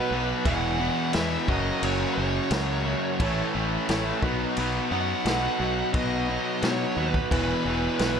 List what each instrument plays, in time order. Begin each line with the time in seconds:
Already playing: overdriven electric guitar B2 F#3 B3, distorted electric guitar B2 F#3 B3, tonewheel organ B3 D#4 F#4 B4, grand piano B4 D#5 F#5, lead electric guitar B4
0.11 fingered electric bass B1, overdriven electric guitar B2 F#3 B3
0.45 fingered electric bass E1, overdriven electric guitar E2 B2 E3, tonewheel organ B3 E4 G#4 B4, grand piano G#4 B4 E5, lead electric guitar F#5, kick, crash
0.79 overdriven electric guitar E2 B2 E3
1.13 overdriven electric guitar E2 B2 E3, fingered electric bass E2, grand piano G#4 B4 E5, lead electric guitar E5, snare, crash
1.48 fingered electric bass F#1, overdriven electric guitar F#2 C#3 F#3, tonewheel organ C#4 F#4 A#4 C#5, grand piano F#4 A#4 C#5, lead electric guitar D#5, kick
1.82 fingered electric bass F#1, overdriven electric guitar F#2 C#3 F#3, lead electric guitar C#5, crash
2.15 fingered electric bass F#1, overdriven electric guitar F#2 C#3 F#3, lead electric guitar C#5
2.51 fingered electric bass C#2, overdriven electric guitar F#2 C#3 F#3, grand piano F#4 A#4 C#5, snare, crash
2.85 overdriven electric guitar F#2 C#3 F#3
3.18 fingered electric bass A1, overdriven electric guitar A2 E3 A3, tonewheel organ C#4 E4 A4 C#5, grand piano E4 A4 C#5, kick, crash
3.54 fingered electric bass A1, overdriven electric guitar A2 E3 A3
3.88 fingered electric bass A1, overdriven electric guitar A2 E3 A3, grand piano E4 A4 C#5, snare, crash
4.22 fingered electric bass B1, overdriven electric guitar B2 F#3 B3, tonewheel organ B3 D#4 F#4 B4, grand piano D#4 F#4 B4, kick
4.57 fingered electric bass B1, overdriven electric guitar B2 F#3 B3, crash
4.91 fingered electric bass F#2, overdriven electric guitar B2 F#3 B3, lead electric guitar F#5
5.24 fingered electric bass B1, overdriven electric guitar B2 F#3, grand piano D#4 F#4 A4, snare, crash
5.29 overdriven electric guitar B3
5.60 fingered electric bass B1, overdriven electric guitar B2 F#3 B3
5.93 fingered electric bass B1, overdriven electric guitar B2 F#3 B3, grand piano D#4 F#4 B4, lead electric guitar D#5, kick, crash
6.29 overdriven electric guitar B2 F#3 B3
6.62 fingered electric bass B2, overdriven electric guitar B2 F#3 B3, grand piano D#4 F#4 C#5, lead electric guitar C#5, snare, crash
6.97 fingered electric bass D#2, overdriven electric guitar B2 F#3 B3
7.11 lead electric guitar B4, kick
7.30 fingered electric bass E1, overdriven electric guitar E2 B2 E3, tonewheel organ B3 E4 G#4 B4, grand piano E4 G#4 B4, lead electric guitar B4, kick, crash
7.65 fingered electric bass E1, overdriven electric guitar E2 B2 E3
7.99 fingered electric bass B1, overdriven electric guitar E2 B2 E3, grand piano E4 G#4 B4, snare, crash